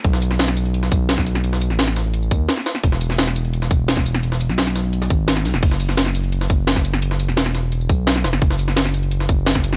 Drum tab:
CC |----------------|----------------|----------------|----------------|
HH |x-x-xxxxx-x-x-x-|x-x-x-x-x-x-x-xx|x-x-xxxxx-x-x-x-|x-x-x-x-x-x-x-x-|
TB |--x---x--xx---x-|--x---x--xx---x-|--x---x--xx---x-|--x--xx--xx--xx-|
SD |-o-ooo---o--oo-o|-o-oooo-----oooo|-o-ooo---o--oo-o|-o-oooo--o--oooo|
BD |o---------o--o--|----------o-----|o---------o--o--|----------o-----|

CC |x---------------|----------------|----------------|
HH |x-x-xxxxx-x-x-x-|x-x-x-x-x-x-x-xx|x-x-xxxxx-x-x-x-|
TB |--x---x--xx---x-|--x---x--xx---x-|--x---x--xx---x-|
SD |-o-ooo---o--oo-o|-o-oooo-----oooo|-o-ooo---o--oo-o|
BD |o---------o--o--|----------o-----|o---------o--o--|